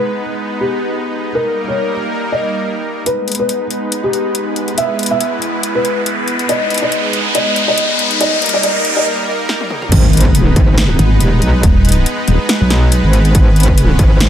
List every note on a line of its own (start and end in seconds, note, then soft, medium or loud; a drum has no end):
0.00 1.31 G#3 medium
0.00 1.33 B3 medium
0.00 3.03 D#4 medium
0.00 0.20 B4 medium
0.00 1.31 B4 medium
0.61 1.27 G4 medium
1.35 3.05 G3 medium
1.35 3.05 A#3 medium
1.35 1.59 A#4 loud
1.35 3.05 A#4 medium
1.68 1.92 C#5 medium
2.32 2.98 D#5 medium
3.06 6.46 G#3 medium
3.06 8.17 B3 medium
3.06 4.76 D#4 medium
3.06 8.17 B4 medium
3.06 3.30 B4 loud
3.06 closed hi-hat medium
3.06 riser medium
3.28 closed hi-hat soft
3.32 closed hi-hat medium
3.35 closed hi-hat medium
3.39 3.63 B4 medium
3.49 closed hi-hat medium
3.71 closed hi-hat medium
3.92 closed hi-hat medium
4.04 4.70 G4 medium
4.13 closed hi-hat medium
4.35 closed hi-hat medium
4.56 closed hi-hat medium
4.68 closed hi-hat soft
4.78 6.47 E4 medium
4.78 5.02 E5 loud
4.78 closed hi-hat medium
4.99 closed hi-hat soft
5.03 closed hi-hat medium
5.06 closed hi-hat medium
5.11 5.35 E5 medium
5.21 closed hi-hat medium
5.42 closed hi-hat medium
5.63 closed hi-hat medium
5.75 6.41 B4 medium
5.85 closed hi-hat medium
6.06 closed hi-hat medium
6.28 closed hi-hat medium
6.39 closed hi-hat soft
6.49 8.19 G#3 medium
6.49 9.89 D#4 medium
6.49 6.73 D#5 medium
6.49 closed hi-hat medium
6.70 closed hi-hat soft
6.74 closed hi-hat medium
6.78 closed hi-hat medium
6.82 7.06 D#5 medium
6.92 closed hi-hat medium
7.13 closed hi-hat medium
7.35 7.59 D#5 medium
7.35 closed hi-hat medium
7.56 closed hi-hat medium
7.68 7.92 D#5 medium
7.78 closed hi-hat medium
7.99 closed hi-hat medium
8.11 closed hi-hat soft
8.21 9.90 G3 medium
8.21 9.90 A#3 medium
8.21 9.90 A#4 medium
8.21 8.45 D#5 loud
8.21 closed hi-hat medium
8.42 closed hi-hat soft
8.46 closed hi-hat medium
8.49 closed hi-hat medium
8.54 8.62 D#5 medium
8.63 8.88 D#5 loud
8.63 closed hi-hat medium
8.85 closed hi-hat medium
8.96 9.05 D#5 medium
9.49 snare medium
9.61 high tom medium
9.70 mid tom medium
9.82 mid tom medium
9.92 10.55 G#1 loud
9.92 14.29 G#3 medium
9.92 14.29 B3 medium
9.92 13.31 D#4 medium
9.92 14.29 B4 medium
9.92 kick loud
9.92 closed hi-hat medium
9.92 crash loud
9.92 impact medium
10.13 closed hi-hat medium
10.17 closed hi-hat medium
10.21 closed hi-hat medium
10.25 kick medium
10.35 closed hi-hat medium
10.56 10.98 G#1 loud
10.56 kick loud
10.56 closed hi-hat medium
10.78 snare loud
10.78 closed hi-hat medium
10.99 11.19 G#1 loud
10.99 closed hi-hat medium
11.20 11.40 D#1 loud
11.20 closed hi-hat medium
11.42 11.62 B1 loud
11.42 closed hi-hat medium
11.63 12.05 D#1 loud
11.63 kick loud
11.63 closed hi-hat medium
11.85 closed hi-hat medium
11.89 closed hi-hat medium
11.92 closed hi-hat medium
12.06 closed hi-hat medium
12.28 12.37 D#1 loud
12.28 closed hi-hat medium
12.49 snare loud
12.49 closed hi-hat medium
12.61 13.02 B1 loud
12.70 snare medium
12.70 closed hi-hat medium
12.92 closed hi-hat medium
13.04 13.33 G#1 loud
13.13 closed hi-hat medium
13.25 closed hi-hat soft
13.35 13.98 G#1 loud
13.35 14.29 C#4 medium
13.35 kick loud
13.35 closed hi-hat medium
13.56 closed hi-hat medium
13.60 closed hi-hat medium
13.63 closed hi-hat medium
13.68 kick medium
13.78 closed hi-hat medium
13.99 14.29 G#1 loud
13.99 kick loud
13.99 closed hi-hat medium
14.20 snare loud
14.20 closed hi-hat medium